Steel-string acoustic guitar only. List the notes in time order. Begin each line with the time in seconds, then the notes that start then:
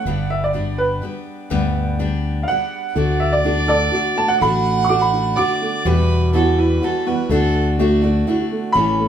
0.06 G2 D3 G3 B3 D4 G4
0.53 G3 B3 D4 G4
1.02 G3 B3 D4 G4
1.50 G2 D3 G3 B3 D4 G4
1.99 G3 B3 D4 G4
2.49 G3 B3 D4 G4
2.96 D3 A3 D4 F#4
3.44 D3 A3 D4 F#4
3.68 A3 D4 F#4
3.93 D3 A3 D4 F#4
4.41 D3 A3 D4 F#4
4.89 D3 A3 D4 F#4
5.37 D3 A3 D4 F#4
5.85 E2 B2 E3 G3 B3 F#4
6.33 E3 G3 B3 F#4
6.82 E3 G3 B3 F#4
7.07 E3 G3 B3 F#4
7.30 D3 A3 D4 F#4
7.79 D3 A3 D4 F#4
8.02 A3 D4 F#4
8.27 D3 A3 D4 F#4
8.74 A2 E3 A3 C#4 A4